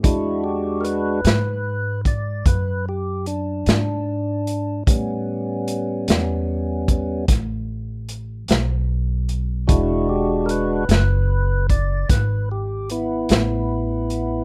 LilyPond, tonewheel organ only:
\new Staff \with { instrumentName = "Tonewheel organ" } { \time 12/8 \key e \mixolydian \tempo 4. = 50 << { e'8 g'8 <ais' b'>4. d''8 b'8 g'8 d'2 | r1. | e'8 g'8 <ais' b'>4. d''8 b'8 g'8 <b e'>2 | } \\ { <gis d' fis'>4. r1 r8 | <g b cis'>2~ <g b cis'>8 <g b cis'>8 r2. | <gis d' fis'>4. r1 r8 | } >> }